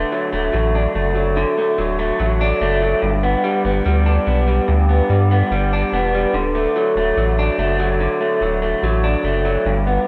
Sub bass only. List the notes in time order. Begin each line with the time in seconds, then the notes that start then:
0.33 D1
0.54 A1
0.95 F#1
1.78 D1
2.20 A1
2.61 F#1
3.02 G1
3.65 G1
3.86 D2
4.27 B1
4.68 D2
5.09 G2
5.51 G1
5.92 E1
6.34 D1
6.96 D1
7.17 A1
7.58 F#1
8.41 D1
8.83 A1
9.24 F#1
9.66 G1